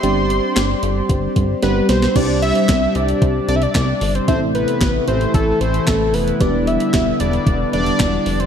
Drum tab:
CC |----------------|x---------------|----------------|----------------|
HH |x-x-x-x-x-x-x-x-|x-xxx-xxx-xxx-ox|x-xxx-xxx-xxx-ox|x-xxx-xxx-xxx-ox|
CP |----x-----------|----x-------x---|----x-------x---|----x-------x---|
SD |----o-------o-oo|----o-------o---|----o-------o---|----o-------o---|
BD |--------o-o-----|o---o---o---o---|o---o---o---o---|o---o---o---o---|